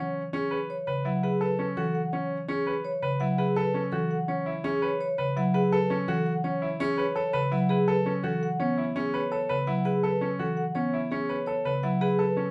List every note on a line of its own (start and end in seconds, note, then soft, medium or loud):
0.00 0.21 C#4 medium
0.00 0.21 C#5 medium
0.33 0.57 C#4 medium
0.33 0.57 G#4 medium
0.51 0.74 B4 medium
0.70 0.93 C#5 medium
0.87 1.11 C#3 medium
0.87 1.11 B4 medium
1.05 1.29 F#3 medium
1.05 1.28 E4 medium
1.05 1.29 F#5 medium
1.23 1.47 G#4 medium
1.23 1.47 B4 medium
1.41 1.64 A4 medium
1.41 1.65 B4 medium
1.59 1.82 C#4 medium
1.77 2.00 E3 medium
1.77 2.00 F#4 medium
1.77 2.00 A4 medium
1.95 2.18 F#5 medium
2.13 2.36 C#4 medium
2.13 2.36 C#5 medium
2.48 2.72 C#4 medium
2.48 2.72 G#4 medium
2.67 2.90 B4 medium
2.85 3.08 C#5 medium
3.02 3.26 C#3 medium
3.02 3.26 B4 medium
3.20 3.44 F#3 medium
3.20 3.44 E4 medium
3.20 3.44 F#5 medium
3.38 3.62 G#4 medium
3.38 3.62 B4 medium
3.56 3.80 A4 medium
3.56 3.80 B4 medium
3.74 3.98 C#4 medium
3.92 4.16 E3 medium
3.92 4.16 F#4 medium
3.92 4.16 A4 medium
4.11 4.34 F#5 medium
4.28 4.52 C#4 medium
4.28 4.52 C#5 medium
4.46 4.70 E4 medium
4.64 4.88 C#4 medium
4.64 4.88 G#4 medium
4.82 5.06 B4 medium
4.82 4.99 C#5 medium
5.01 5.24 C#5 medium
5.18 5.42 C#3 medium
5.18 5.42 B4 medium
5.36 5.60 F#3 medium
5.36 5.60 E4 medium
5.36 5.60 F#5 medium
5.54 5.78 G#4 loud
5.54 5.78 B4 medium
5.72 5.96 A4 medium
5.72 5.96 B4 medium
5.90 6.14 C#4 medium
6.08 6.32 E3 medium
6.08 6.32 F#4 medium
6.08 6.32 A4 medium
6.26 6.50 F#5 medium
6.44 6.67 C#4 medium
6.44 6.67 C#5 medium
6.62 6.85 E4 medium
6.80 7.03 C#4 medium
6.80 7.03 G#4 medium
6.98 7.21 B4 medium
6.98 7.15 C#5 medium
7.15 7.39 A4 medium
7.15 7.39 C#5 medium
7.33 7.57 C#3 medium
7.33 7.57 B4 medium
7.52 7.75 F#3 medium
7.52 7.75 E4 medium
7.52 7.75 F#5 medium
7.69 7.93 G#4 medium
7.69 7.93 B4 medium
7.88 8.11 A4 medium
7.88 8.11 B4 medium
8.06 8.29 C#4 medium
8.23 8.47 E3 medium
8.23 8.47 F#4 medium
8.23 8.47 A4 medium
8.43 8.65 F#5 medium
8.60 8.83 B3 medium
8.60 8.83 C#4 medium
8.60 8.83 C#5 medium
8.78 9.01 E4 medium
8.96 9.19 C#4 medium
8.96 9.19 G#4 medium
9.14 9.37 B4 medium
9.14 9.31 C#5 medium
9.32 9.55 A4 medium
9.32 9.55 C#5 medium
9.49 9.73 C#3 medium
9.49 9.73 B4 medium
9.67 9.91 F#3 medium
9.67 9.91 E4 medium
9.67 9.91 F#5 medium
9.85 10.09 G#4 medium
9.85 10.09 B4 medium
10.03 10.27 A4 medium
10.03 10.27 B4 medium
10.21 10.45 C#4 medium
10.39 10.63 E3 medium
10.39 10.63 F#4 medium
10.39 10.63 A4 medium
10.57 10.81 F#5 medium
10.75 10.99 B3 medium
10.75 10.99 C#4 medium
10.75 10.98 C#5 medium
10.93 11.17 E4 medium
11.11 11.35 C#4 medium
11.11 11.34 G#4 medium
11.29 11.53 B4 medium
11.29 11.45 C#5 medium
11.46 11.71 A4 medium
11.46 11.70 C#5 medium
11.65 11.88 C#3 medium
11.65 11.89 B4 medium
11.83 12.07 F#3 medium
11.83 12.07 E4 medium
11.83 12.06 F#5 medium
12.01 12.24 G#4 medium
12.01 12.24 B4 medium
12.19 12.42 A4 medium
12.19 12.42 B4 medium
12.37 12.51 C#4 medium